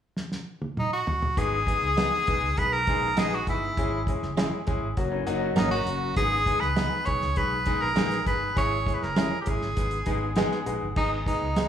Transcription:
0.17 snare
0.32 snare
0.62 high tom
0.77 D#4, mid tom
0.93 F#4
1.07 floor tom
1.22 floor tom
1.37 G#1 G#3 B3 D#4 G#4, kick, closed hi-hat
1.67 G#3 B3 D#4 G#4, kick, closed hi-hat
1.82 C#2
1.97 G#3 B3 D#4 G#4, snare, closed hi-hat
2.27 B1 G#3 B3 D#4 G#4, kick, closed hi-hat
2.42 C#2
2.57 B1 G#3 B3 D#4 G#4 B4, kick, closed hi-hat
2.73 A#4
2.87 G#3 B3 D#4 G#4, kick, closed hi-hat
3.01 A#1
3.17 A#1 G#3 B3 D#4 G#4, snare, closed hi-hat
3.32 F#4, snare
3.47 G1 G#3 B3 D#4 E4 G#4, kick, closed hi-hat
3.77 G#1 G#3 C#4 E4 G#4, kick, closed hi-hat
4.07 G#3 C#4 E4 G#4, kick, closed hi-hat
4.22 F#1, snare
4.37 G#3 C#4 E4 G#4, snare, closed hi-hat
4.67 G#1 G#3 C#4 E4 G#4, kick, closed hi-hat
4.82 G#1
4.97 F#1 F#3 A#3 C#4 F#4, kick, closed hi-hat
5.12 E3 C#4
5.27 F#1 F#3 A#3 C#4 D#4 F#4, closed hi-hat
5.41 A#3 F#4
5.56 G#1 F#3 A#3 C#4 D#4 F#4 G#4 A#4, snare, closed hi-hat
5.71 C#4 F#4 A#4, snare
5.86 F#1 F#3 A#3 C#4 F#4, closed hi-hat
6.16 G#1 G#3 B3 D#4 G#4, kick, closed hi-hat
6.46 G#3 B3 D#4 G#4, kick, closed hi-hat
6.60 C#2 B4, snare
6.76 G#3 B3 D#4 G#4, snare, closed hi-hat
7.05 B1 G#3 B3 D#4 G#4 C#5, kick, closed hi-hat
7.21 C#2, snare
7.36 B1 G#3 B3 D#4 G#4 B4, kick, closed hi-hat
7.66 G#3 B3 D#4 G#4, kick, closed hi-hat
7.82 A#1 A#4
7.96 A#1 G#3 B3 D#4 G#4, snare, closed hi-hat
8.11 snare, closed hi-hat
8.26 G1 G#3 B3 D#4 G#4 B4, kick, closed hi-hat
8.56 G#1 G#3 C#4 E4 G#4 C#5, kick, closed hi-hat
8.87 G#3 C#4 E4 G#4, kick, closed hi-hat
8.94 B4
9.02 F#1 A#4, snare
9.16 G#3 C#4 E4 G#4, snare, closed hi-hat
9.41 G4
9.46 G#1 G#3 C#4 E4 G#4, kick, closed hi-hat
9.62 G#1, snare
9.76 G#1 G#3 B3 D#4 G#4, kick, closed hi-hat
9.91 closed hi-hat
10.06 G#1 G#3 B3 D#4 G#4, kick, closed hi-hat
10.36 G#3 B3 D#4 G#4 G#5, snare, closed hi-hat
10.51 snare
10.66 A#1 G#3 B3 D#4 G#4 F#5, closed hi-hat
10.83 G1
10.96 G#1 G#3 B3 D#4 G#4, kick, crash
11.26 G#3 B3 D#4 G#4, kick, closed hi-hat
11.42 C#2
11.56 G#3 B3 D#4 G#4, snare, closed hi-hat

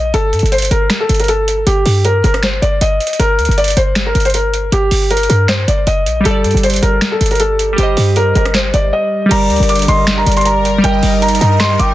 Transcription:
Already playing: A#1 D#5
0.14 G1 A4, closed hi-hat
0.33 G2, closed hi-hat
0.39 G1, closed hi-hat
0.46 closed hi-hat
0.52 C5, closed hi-hat
0.58 closed hi-hat
0.62 closed hi-hat
0.65 closed hi-hat
0.71 G1 A#4, closed hi-hat
0.90 finger snap, snare, closed hi-hat
1.00 A4
1.09 G1, closed hi-hat
1.14 closed hi-hat
1.20 A#4, closed hi-hat
1.24 closed hi-hat
1.28 A4, closed hi-hat
1.48 closed hi-hat
1.67 G1 G4, closed hi-hat
1.86 G2, open hi-hat
2.05 A#4, closed hi-hat
2.24 G1 A#4, closed hi-hat
2.34 cross-stick, closed hi-hat
2.43 C5, finger snap, snare, closed hi-hat
2.62 G1 D5, closed hi-hat
2.81 G1 D#5, closed hi-hat
3.00 closed hi-hat
3.07 closed hi-hat
3.13 closed hi-hat
3.19 G1 A#4, closed hi-hat
3.39 D2, closed hi-hat
3.45 G1, closed hi-hat
3.51 closed hi-hat
3.58 D5, closed hi-hat
3.64 closed hi-hat
3.68 closed hi-hat
3.70 closed hi-hat
3.77 G1 C5, closed hi-hat
3.95 finger snap, snare, closed hi-hat
4.06 A#4
4.15 G1, closed hi-hat
4.20 closed hi-hat
4.25 C5, closed hi-hat
4.30 closed hi-hat
4.34 A#4, closed hi-hat
4.54 closed hi-hat
4.72 G1 G4, closed hi-hat
4.91 G1, open hi-hat
5.11 A#4, closed hi-hat
5.17 closed hi-hat
5.23 closed hi-hat
5.29 G2 A#4, closed hi-hat
5.48 C5, finger snap, snare, closed hi-hat
5.68 G1 D5, closed hi-hat
5.87 F#1 D#5, closed hi-hat
6.06 A#1, closed hi-hat
6.20 G3 G4
6.25 G1 A4, closed hi-hat
6.31 D5
6.44 G2, closed hi-hat
6.51 G1, closed hi-hat
6.57 closed hi-hat
6.63 C5, closed hi-hat
6.70 closed hi-hat
6.74 closed hi-hat
6.76 closed hi-hat
6.82 G1 A#4, closed hi-hat
7.01 finger snap, snare, closed hi-hat
7.12 A4
7.21 G1, closed hi-hat
7.26 closed hi-hat
7.31 A#4, closed hi-hat
7.35 closed hi-hat
7.40 A4, closed hi-hat
7.59 closed hi-hat
7.73 G3 G4
7.78 G1 G4 C5, closed hi-hat
7.83 D#5
7.97 G2, open hi-hat
8.16 A#4, closed hi-hat
8.35 G1 A#4, closed hi-hat
8.45 cross-stick, closed hi-hat
8.54 C5, finger snap, snare, closed hi-hat
8.74 G1 D5, closed hi-hat
8.93 D#5
9.26 G3 G4
9.31 G1 D3 G3 A#4 D5 A#5, closed hi-hat, crash
9.50 D2, closed hi-hat
9.56 G1, closed hi-hat
9.63 closed hi-hat
9.69 D6, closed hi-hat
9.76 closed hi-hat
9.79 closed hi-hat
9.82 closed hi-hat
9.88 G1 D#5 C6, closed hi-hat
10.07 finger snap, snare, closed hi-hat
10.18 A#5
10.26 G1 D5, closed hi-hat
10.32 closed hi-hat
10.37 C6, closed hi-hat
10.41 closed hi-hat
10.45 A#5, closed hi-hat
10.65 closed hi-hat
10.78 G3 G4
10.84 G1 D#4 A#4 D#5 G5, closed hi-hat
10.88 D#5
11.03 G1, open hi-hat
11.22 A#5, closed hi-hat
11.28 closed hi-hat
11.35 closed hi-hat
11.41 G2 D#5 A#5, closed hi-hat
11.60 C6, finger snap, snare, closed hi-hat
11.79 G1 G5 D6, closed hi-hat

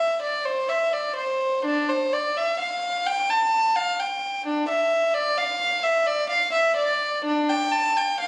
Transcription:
Already playing: E5
0.22 D5
0.45 C5
0.69 E5
0.93 D5
1.16 C5
1.65 D4
1.89 C5
2.13 D5
2.37 E5
2.60 F5
3.06 G5
3.30 A5
3.76 F5
4.00 G5
4.46 D4
4.69 E5
5.15 D5
5.38 F5
5.83 E5
6.07 D5
6.29 F5
6.53 E5
6.76 D5
7.25 D4
7.50 G5
7.72 A5
7.97 G5
8.20 F5

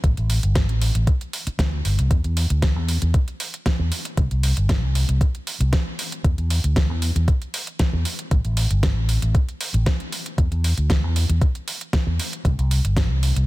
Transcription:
0.04 A1, kick, closed hi-hat
0.17 A1, closed hi-hat
0.30 open hi-hat
0.43 G1, closed hi-hat
0.55 kick, snare, closed hi-hat
0.69 A1, closed hi-hat
0.81 open hi-hat
0.95 A1, closed hi-hat
1.07 kick, closed hi-hat
1.21 closed hi-hat
1.33 open hi-hat
1.47 muted fingered electric bass stroke, closed hi-hat
1.59 D2, kick, snare, closed hi-hat
1.85 G1, open hi-hat
1.99 C2, closed hi-hat
2.11 E2, kick, closed hi-hat
2.24 E2, closed hi-hat
2.37 open hi-hat
2.50 D2, closed hi-hat
2.62 kick, snare, closed hi-hat
2.76 E2
2.88 open hi-hat
3.02 E2, closed hi-hat
3.14 kick, closed hi-hat
3.28 closed hi-hat
3.40 open hi-hat
3.54 closed hi-hat
3.66 kick, snare, closed hi-hat
3.79 E2
3.92 open hi-hat
4.05 closed hi-hat
4.17 C2, kick, closed hi-hat
4.31 C2, closed hi-hat
4.43 open hi-hat
4.57 G1, closed hi-hat
4.69 kick, snare, closed hi-hat
4.83 C2
4.95 open hi-hat
5.09 C2, closed hi-hat
5.21 kick, closed hi-hat
5.35 closed hi-hat
5.47 open hi-hat
5.60 C2, closed hi-hat
5.73 kick, snare, closed hi-hat
5.99 open hi-hat
6.12 closed hi-hat
6.24 E2, kick, closed hi-hat
6.38 E2, closed hi-hat
6.50 open hi-hat
6.64 D2, closed hi-hat
6.76 kick, snare, closed hi-hat
6.89 E2
7.02 open hi-hat
7.16 E2, closed hi-hat
7.28 kick, closed hi-hat
7.42 closed hi-hat
7.54 open hi-hat
7.67 closed hi-hat
7.79 kick, snare, closed hi-hat
7.93 E2
8.05 open hi-hat
8.19 closed hi-hat
8.31 A1, kick, closed hi-hat
8.45 A1, closed hi-hat
8.57 open hi-hat
8.71 G1, closed hi-hat
8.83 kick, snare, closed hi-hat
8.96 A1
9.09 open hi-hat
9.22 A1, closed hi-hat
9.35 kick, closed hi-hat
9.49 closed hi-hat
9.61 open hi-hat
9.74 A1, closed hi-hat
9.86 kick, snare, closed hi-hat
10.00 closed hi-hat
10.12 open hi-hat
10.26 closed hi-hat
10.38 E2, kick, closed hi-hat
10.52 E2, closed hi-hat
10.64 open hi-hat
10.77 D2, closed hi-hat
10.90 kick, snare, closed hi-hat
11.04 E2
11.16 open hi-hat
11.29 E2, closed hi-hat
11.41 kick, closed hi-hat
11.55 closed hi-hat
11.68 open hi-hat
11.81 closed hi-hat
11.93 kick, snare, closed hi-hat
12.07 E2
12.19 open hi-hat
12.33 closed hi-hat
12.45 C2, kick, closed hi-hat
12.59 C2, closed hi-hat
12.71 open hi-hat
12.84 G1, closed hi-hat
12.97 kick, snare, closed hi-hat
13.10 C2
13.23 open hi-hat
13.36 C2, closed hi-hat

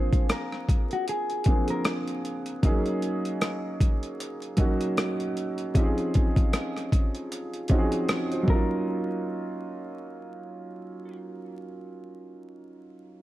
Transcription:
Already playing: F3 A#3 C4 D4 G#4 C5
0.13 kick, closed hi-hat
0.29 A#4, cross-stick, closed hi-hat
0.52 cross-stick
0.69 kick, closed hi-hat
0.91 F#4, closed hi-hat
1.08 G#4, closed hi-hat
1.30 closed hi-hat
1.44 F3 A#3 C4 D4, kick, closed hi-hat
1.49 G#4
1.68 A#4, closed hi-hat
1.85 cross-stick, closed hi-hat
2.08 closed hi-hat
2.25 closed hi-hat
2.46 closed hi-hat
2.63 F#3 A#3 C#4 D#4 G#4, kick, closed hi-hat
2.86 closed hi-hat
3.02 closed hi-hat
3.25 closed hi-hat
3.41 cross-stick, closed hi-hat
3.81 kick, closed hi-hat
4.03 closed hi-hat
4.20 closed hi-hat
4.42 closed hi-hat
4.57 F#3 A#3 C#4 D#4 F#4, kick, closed hi-hat
4.81 closed hi-hat
4.97 cross-stick, closed hi-hat
5.20 closed hi-hat
5.37 closed hi-hat
5.58 closed hi-hat
5.74 F3 C4 C#4 D#4 G4, kick, closed hi-hat
5.84 G#4
5.98 closed hi-hat
6.14 kick, closed hi-hat
6.36 kick, closed hi-hat
6.53 cross-stick, closed hi-hat
6.76 cross-stick, closed hi-hat
6.92 kick, closed hi-hat
7.15 closed hi-hat
7.32 closed hi-hat
7.54 closed hi-hat
7.68 F3 C4 C#4 D#4, kick, closed hi-hat
7.72 F#4
7.78 G#4
7.92 closed hi-hat
8.09 cross-stick, closed hi-hat
8.32 F4 C5, closed hi-hat
8.43 F#3 A#3
8.48 C#4 A#4, kick
8.52 D#4 F4

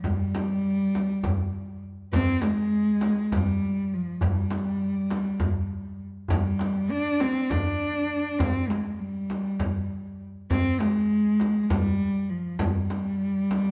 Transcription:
0.03 G3, frame drum, darbuka dum
0.35 darbuka tek, frame drum
0.64 darbuka ka
0.95 frame drum
1.23 darbuka dum, frame drum
1.54 darbuka ka
1.84 darbuka ka
2.13 C4, darbuka dum, frame drum
2.42 G#3, darbuka tek, frame drum
2.74 darbuka ka
3.01 darbuka tek, frame drum
3.32 G3, darbuka dum, frame drum
3.62 darbuka ka
3.92 F3, darbuka ka
4.21 G3, darbuka dum, frame drum
4.51 darbuka tek, frame drum
4.81 darbuka ka
5.10 darbuka tek, frame drum
5.40 frame drum, darbuka dum
5.70 darbuka ka
6.28 darbuka dum, frame drum
6.33 G3
6.59 darbuka tek, frame drum
6.89 D4, darbuka ka
7.20 C4, darbuka tek, frame drum
7.50 D4, darbuka dum, frame drum
7.80 darbuka ka
8.39 C4, frame drum, darbuka dum
8.69 G#3, darbuka tek, frame drum
8.99 G3, darbuka ka
9.30 darbuka tek, frame drum
9.60 frame drum, darbuka dum
9.91 darbuka ka
10.21 darbuka ka
10.51 C4, frame drum, darbuka dum
10.80 G#3, darbuka tek, frame drum
11.12 darbuka ka
11.40 darbuka tek, frame drum
11.63 G#3
11.69 G3, frame drum, darbuka dum
12.00 darbuka ka
12.30 F3, darbuka ka
12.59 G3, frame drum, darbuka dum
12.90 darbuka tek, frame drum
13.21 darbuka ka
13.51 darbuka tek, frame drum

